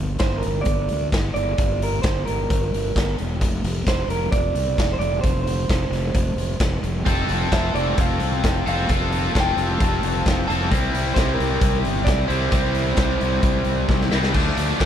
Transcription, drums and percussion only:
0.19 kick, snare, closed hi-hat
0.43 closed hi-hat
0.65 kick, closed hi-hat
0.89 closed hi-hat
1.12 kick, snare, closed hi-hat
1.36 closed hi-hat
1.58 kick, closed hi-hat
1.82 closed hi-hat
2.03 kick, snare, closed hi-hat
2.27 closed hi-hat
2.50 kick, closed hi-hat
2.74 closed hi-hat
2.96 kick, snare, closed hi-hat
3.18 closed hi-hat
3.41 kick, closed hi-hat
3.64 closed hi-hat
3.87 kick, snare, closed hi-hat
4.10 closed hi-hat
4.32 kick, closed hi-hat
4.55 closed hi-hat
4.78 kick, snare, closed hi-hat
5.01 closed hi-hat
5.24 kick, closed hi-hat
5.47 closed hi-hat
5.69 kick, snare, closed hi-hat
5.93 snare, closed hi-hat
6.14 kick, closed hi-hat
6.38 closed hi-hat
6.60 kick, snare, closed hi-hat
6.84 closed hi-hat
7.06 kick, closed hi-hat
7.29 closed hi-hat
7.52 kick, snare, closed hi-hat
7.75 closed hi-hat
7.98 kick, closed hi-hat
8.20 closed hi-hat
8.44 kick, snare, closed hi-hat
8.67 closed hi-hat
8.89 kick, closed hi-hat
9.12 closed hi-hat
9.35 kick, snare, closed hi-hat
9.58 closed hi-hat
9.80 kick, closed hi-hat
10.03 closed hi-hat
10.26 kick, snare, closed hi-hat
10.50 closed hi-hat
10.72 kick, closed hi-hat
10.95 closed hi-hat
11.16 kick, snare, closed hi-hat
11.40 closed hi-hat
11.61 kick, closed hi-hat
11.85 closed hi-hat
12.07 kick, snare, closed hi-hat
12.30 closed hi-hat
12.52 kick, closed hi-hat
12.75 closed hi-hat
12.97 kick, snare, closed hi-hat
13.21 closed hi-hat
13.43 kick, closed hi-hat
13.64 closed hi-hat
13.89 kick, snare
14.01 snare
14.12 snare
14.23 snare
14.34 kick, crash
14.57 closed hi-hat
14.80 kick, snare

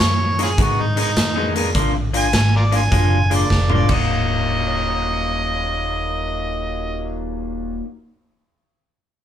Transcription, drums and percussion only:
0.00 snare
0.39 closed hi-hat
0.58 kick, closed hi-hat
0.97 closed hi-hat
1.16 snare, closed hi-hat
1.56 closed hi-hat
1.75 kick, closed hi-hat
2.14 closed hi-hat
2.33 snare, closed hi-hat
2.72 closed hi-hat
2.92 kick, closed hi-hat
3.31 closed hi-hat
3.50 kick, snare
3.69 mid tom
3.89 kick, crash

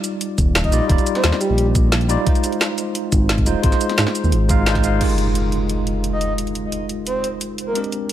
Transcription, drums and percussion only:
0.04 closed hi-hat, shaker
0.21 closed hi-hat
0.38 kick, closed hi-hat, shaker
0.55 snare, closed hi-hat
0.64 kick, closed hi-hat
0.72 closed hi-hat, shaker
0.89 kick, closed hi-hat
0.98 closed hi-hat, shaker
1.06 closed hi-hat, shaker
1.15 snare, closed hi-hat
1.24 snare, closed hi-hat
1.32 snare
1.41 closed hi-hat, shaker
1.58 closed hi-hat
1.75 kick, closed hi-hat, shaker
1.92 snare, closed hi-hat
2.01 closed hi-hat
2.09 closed hi-hat, shaker
2.27 kick, closed hi-hat
2.35 closed hi-hat, shaker
2.44 closed hi-hat, shaker
2.52 closed hi-hat
2.61 snare, closed hi-hat
2.78 closed hi-hat, shaker
2.95 closed hi-hat
3.12 kick, closed hi-hat, shaker
3.29 snare, closed hi-hat
3.38 kick, closed hi-hat
3.46 closed hi-hat, shaker
3.63 kick, closed hi-hat
3.72 snare, closed hi-hat, shaker
3.81 closed hi-hat, shaker
3.89 snare, closed hi-hat
3.98 snare, closed hi-hat
4.07 snare
4.15 closed hi-hat, shaker
4.24 shaker
4.32 closed hi-hat
4.49 kick, closed hi-hat, shaker
4.66 snare, closed hi-hat
4.75 kick, snare, closed hi-hat
4.84 closed hi-hat, shaker
5.01 closed hi-hat, crash
5.09 closed hi-hat
5.18 closed hi-hat
5.35 closed hi-hat
5.52 closed hi-hat
5.69 closed hi-hat
5.87 closed hi-hat
6.04 closed hi-hat
6.21 closed hi-hat
6.38 closed hi-hat
6.47 closed hi-hat
6.55 closed hi-hat
6.72 closed hi-hat
6.89 closed hi-hat
7.07 closed hi-hat
7.24 closed hi-hat
7.41 closed hi-hat
7.58 closed hi-hat
7.75 closed hi-hat
7.84 closed hi-hat
7.92 closed hi-hat
8.09 closed hi-hat

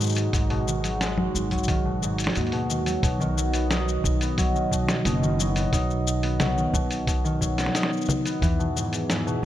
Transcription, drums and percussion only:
0.01 shaker
0.03 shaker
0.06 shaker
0.09 shaker
0.12 shaker
0.15 open hi-hat, shaker
0.17 shaker
0.33 kick, open hi-hat, shaker
0.50 open hi-hat
0.68 shaker
0.84 open hi-hat, shaker
1.01 snare, open hi-hat, shaker
1.18 low conga
1.35 shaker
1.51 kick, open hi-hat, shaker
1.58 shaker
1.63 shaker
1.68 kick, open hi-hat
2.03 shaker
2.18 open hi-hat, shaker
2.24 snare, open hi-hat
2.30 open hi-hat
2.35 open hi-hat, shaker
2.41 open hi-hat
2.47 open hi-hat
2.52 open hi-hat
2.70 shaker
2.86 open hi-hat, shaker
3.03 kick, open hi-hat, shaker
3.21 shaker
3.38 shaker
3.54 open hi-hat, shaker
3.71 snare, open hi-hat, shaker
3.88 shaker
4.04 kick, shaker
4.21 open hi-hat, shaker
4.38 kick, open hi-hat, shaker
4.56 shaker
4.72 kick, shaker
4.88 snare, open hi-hat, shaker
5.05 open hi-hat, shaker
5.23 shaker
5.40 shaker
5.56 open hi-hat, shaker
5.73 kick, open hi-hat, shaker
5.90 shaker
6.07 shaker
6.23 open hi-hat
6.40 snare, open hi-hat, low conga, shaker
6.58 shaker
6.74 kick, shaker
6.91 open hi-hat, shaker
7.07 kick, open hi-hat, shaker
7.25 shaker
7.41 kick, shaker
7.58 snare, open hi-hat, shaker
7.66 snare
7.75 snare, open hi-hat, shaker
7.83 snare
7.93 shaker
7.97 shaker
8.01 shaker
8.05 low conga, shaker
8.10 shaker
8.25 open hi-hat, shaker
8.42 kick, open hi-hat, shaker
8.60 shaker
8.77 shaker
8.93 open hi-hat, shaker
9.10 snare, open hi-hat, shaker
9.27 shaker

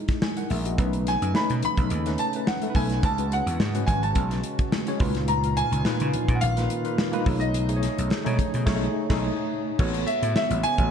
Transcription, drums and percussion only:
0.08 kick, snare, closed hi-hat
0.22 snare, high conga
0.37 closed hi-hat
0.50 open hi-hat, high conga
0.65 closed hi-hat
0.78 kick, closed hi-hat, muted conga
0.93 closed hi-hat
1.07 snare, closed hi-hat, muted conga
1.22 closed hi-hat
1.35 snare, high conga
1.50 closed hi-hat
1.63 closed hi-hat, low conga
1.77 kick, closed hi-hat
1.90 closed hi-hat, muted conga
2.06 snare, closed hi-hat
2.18 closed hi-hat, muted conga
2.33 closed hi-hat
2.47 snare, high conga
2.62 closed hi-hat
2.75 kick, open hi-hat, high conga
2.89 snare, closed hi-hat
3.03 kick, closed hi-hat, muted conga
3.18 closed hi-hat
3.32 closed hi-hat, muted conga
3.47 closed hi-hat
3.60 snare, high conga
3.75 closed hi-hat
3.88 kick, closed hi-hat, low conga
4.03 closed hi-hat
4.15 kick, closed hi-hat, muted conga
4.31 snare, closed hi-hat
4.44 closed hi-hat
4.59 kick, closed hi-hat
4.72 snare, high conga
4.87 closed hi-hat
5.00 kick, open hi-hat, high conga
5.15 snare, closed hi-hat
5.28 closed hi-hat, muted conga
5.44 closed hi-hat
5.57 closed hi-hat, muted conga
5.73 closed hi-hat
5.85 snare, high conga
6.00 closed hi-hat
6.13 closed hi-hat, low conga
6.28 kick, closed hi-hat
6.41 closed hi-hat, muted conga
6.57 snare, closed hi-hat
6.70 closed hi-hat, muted conga
6.85 closed hi-hat
6.98 snare, high conga
7.13 closed hi-hat
7.26 kick, open hi-hat, high conga
7.41 closed hi-hat
7.54 closed hi-hat, muted conga
7.69 closed hi-hat
7.82 snare, closed hi-hat, muted conga
7.98 closed hi-hat
8.10 snare, high conga
8.26 closed hi-hat
8.39 kick, closed hi-hat, low conga
8.54 closed hi-hat
8.67 kick, snare, crash
9.10 kick, snare, crash
9.79 kick, crash, muted conga
9.94 closed hi-hat
10.07 closed hi-hat, muted conga
10.23 closed hi-hat
10.36 snare, high conga
10.51 closed hi-hat
10.64 closed hi-hat
10.78 kick, closed hi-hat

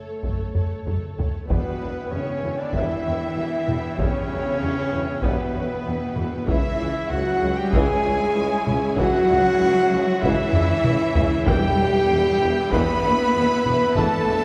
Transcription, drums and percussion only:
0.24 taiko
0.55 taiko low-mid
0.87 taiko low-mid
1.19 taiko low
1.50 taiko
2.74 taiko
3.68 taiko mid
3.99 taiko
5.23 taiko
6.17 taiko mid
6.48 taiko
7.73 taiko
8.67 taiko mid
8.98 taiko
10.23 taiko
10.53 taiko low-mid
10.84 taiko mid
11.15 taiko low
11.46 taiko
12.72 taiko
13.65 taiko mid
13.96 taiko

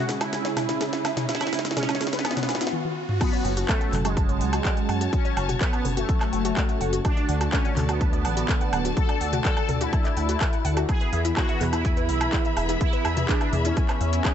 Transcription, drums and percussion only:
0.09 snare, open hi-hat
0.21 snare, closed hi-hat, low woodblock
0.33 snare, closed hi-hat
0.45 snare, closed hi-hat
0.57 snare, open hi-hat, mid tom, low woodblock
0.69 snare, closed hi-hat
0.81 snare, closed hi-hat
0.93 snare, closed hi-hat
1.05 snare, open hi-hat, low woodblock
1.17 snare, closed hi-hat, mid tom
1.29 snare, closed hi-hat
1.35 snare
1.41 snare, closed hi-hat, low woodblock
1.47 snare
1.53 snare, open hi-hat
1.59 snare
1.65 snare, closed hi-hat
1.71 snare
1.77 snare, closed hi-hat, mid tom
1.83 snare
1.89 snare, closed hi-hat, low woodblock
1.95 snare
2.01 snare, open hi-hat
2.07 snare
2.13 snare, closed hi-hat
2.19 snare
2.25 snare, closed hi-hat, low woodblock
2.31 snare
2.37 snare, closed hi-hat, mid tom
2.43 snare
2.49 snare, open hi-hat
2.55 snare
2.61 snare, closed hi-hat
2.67 snare
2.73 high tom
2.85 high tom
3.09 mid tom
3.21 kick, closed hi-hat, crash, low woodblock
3.33 closed hi-hat
3.45 open hi-hat
3.57 closed hi-hat
3.69 kick, clap, closed hi-hat, low woodblock
3.81 closed hi-hat
3.93 clap, open hi-hat, mid tom
4.05 closed hi-hat, low woodblock
4.17 kick, closed hi-hat
4.29 closed hi-hat
4.41 open hi-hat
4.53 closed hi-hat, low woodblock
4.65 kick, clap, closed hi-hat
4.77 closed hi-hat
4.89 open hi-hat, low woodblock
5.01 closed hi-hat
5.13 kick, closed hi-hat
5.25 closed hi-hat
5.37 open hi-hat, low woodblock
5.49 closed hi-hat, mid tom
5.61 kick, clap, closed hi-hat
5.73 closed hi-hat, low woodblock
5.85 open hi-hat, mid tom
5.97 closed hi-hat
6.09 kick, closed hi-hat
6.21 clap, closed hi-hat, low woodblock
6.33 open hi-hat
6.45 closed hi-hat
6.57 kick, clap, closed hi-hat, low woodblock
6.69 closed hi-hat
6.81 open hi-hat
6.93 closed hi-hat
7.05 kick, closed hi-hat, low woodblock
7.17 closed hi-hat
7.29 open hi-hat
7.41 closed hi-hat, low woodblock
7.53 kick, clap, closed hi-hat
7.65 closed hi-hat
7.77 clap, open hi-hat, mid tom
7.89 closed hi-hat, low woodblock
8.01 kick, closed hi-hat
8.13 closed hi-hat
8.25 open hi-hat, low woodblock
8.37 closed hi-hat
8.49 kick, clap, closed hi-hat
8.61 closed hi-hat
8.73 open hi-hat, low woodblock
8.85 closed hi-hat
8.97 kick, closed hi-hat
9.09 closed hi-hat, low woodblock
9.21 open hi-hat
9.33 closed hi-hat, mid tom
9.45 kick, clap, closed hi-hat
9.57 closed hi-hat, low woodblock
9.69 open hi-hat, mid tom
9.81 closed hi-hat
9.93 kick, closed hi-hat, low woodblock
10.05 clap, closed hi-hat
10.17 open hi-hat
10.29 closed hi-hat
10.41 kick, clap, closed hi-hat, low woodblock
10.53 closed hi-hat
10.65 open hi-hat
10.77 closed hi-hat, low woodblock
10.89 kick, closed hi-hat, low woodblock
11.01 closed hi-hat
11.13 open hi-hat
11.25 closed hi-hat
11.37 kick, clap, closed hi-hat, low woodblock
11.49 closed hi-hat
11.61 clap, open hi-hat, mid tom
11.73 closed hi-hat, low woodblock
11.85 kick, closed hi-hat
11.97 closed hi-hat
12.09 open hi-hat
12.21 closed hi-hat, low woodblock
12.33 kick, clap, closed hi-hat
12.45 closed hi-hat
12.57 open hi-hat, low woodblock
12.69 closed hi-hat
12.81 kick, closed hi-hat
12.93 closed hi-hat
13.05 open hi-hat, low woodblock
13.17 closed hi-hat, mid tom
13.29 kick, clap, closed hi-hat
13.41 closed hi-hat, low woodblock
13.53 open hi-hat, mid tom
13.65 closed hi-hat
13.77 kick, closed hi-hat
13.89 clap, closed hi-hat, low woodblock
14.01 open hi-hat
14.13 closed hi-hat
14.25 kick, clap, closed hi-hat, low woodblock

